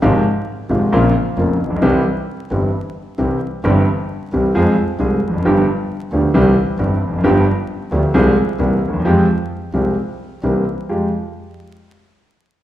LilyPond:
<<
  \new Staff \with { instrumentName = "Grand piano" } { \clef bass \time 4/4 \key f \minor \tempo 4 = 133 <aes,, aes, c f aes f'>8 r4 <aes,, aes, c f aes f'>8 <bes,, bes, des bes c' f'>8 r8 <f,, f, des bes c' f'>8 r32 a,,32 bes,,32 b,,32 | <c, c e g c' g'>8 r4 <g,, g, e g c' g'>8 r4 <c, c e g c' g'>8 r8 | <g,, g, e g c' g'>8 r4 <c, c e g c' g'>8 <f, f aes c' aes'>8 r8 <c, c f aes c' aes'>8 r32 e,32 f,32 ges,32 | <g,, g, f b d' g'>8 r4 <d, d f b d' g'>8 <c, c e g c' g'>8 r8 <g,, g, e g c' g'>8 r32 e,32 f,32 ges,32 |
<g,, g, f b d' g'>8 r4 <d, d f b d' g'>8 <c, c f aes c' aes'>8 r8 <c, c e bes c' g'>8 r32 d,32 ees,32 e,32 | <f, f aes c' g'>8 r4 <c, c f aes c' g'>8 r4 <c, c e bes c' g'>8 r8 | <f, aes f' g'>8 r2. r8 | }
  \new Staff \with { instrumentName = "Double bass" } { \clef bass \time 4/4 \key f \minor aes,,8 r4 aes,,8 bes,,8 r8 f,,8 bes,,8 | c,8 r4 g,,8 r4 c,8 r8 | g,,8 r4 c,8 f,8 r8 c,8 f,,8 | g,,8 r4 d,8 c,8 r8 g,,8 f,,8 |
g,,8 r4 d,8 c,8 r8 c,8 ees,8 | f,8 r4 c,8 r4 c,8 r8 | f,8 r2. r8 | }
>>